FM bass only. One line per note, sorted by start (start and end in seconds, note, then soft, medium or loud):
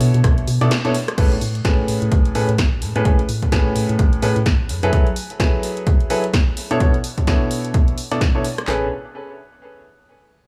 0.01 0.12 B2 medium
0.14 0.22 B2 medium
0.24 0.44 B1 medium
0.48 0.59 B2 medium
0.61 0.69 B2 loud
1.18 1.38 A1 loud
1.41 1.61 A2 medium
1.65 1.85 A1 medium
1.88 2.00 A2 medium
2.02 2.10 A2 medium
2.12 2.32 A1 medium
2.35 2.47 A2 medium
2.49 2.60 A2 medium
2.58 2.83 A1 loud
2.82 2.93 A2 loud
2.96 3.04 A2 medium
3.05 3.25 A1 loud
3.29 3.49 A2 medium
3.52 3.72 A1 medium
3.76 3.87 A2 medium
3.89 3.97 A2 medium
3.99 4.19 A1 loud
4.22 4.34 A2 medium
4.36 4.47 A2 loud
4.46 4.71 A1 loud
4.69 4.81 F#2 loud
4.83 4.91 F#2 medium
8.68 8.90 A1 loud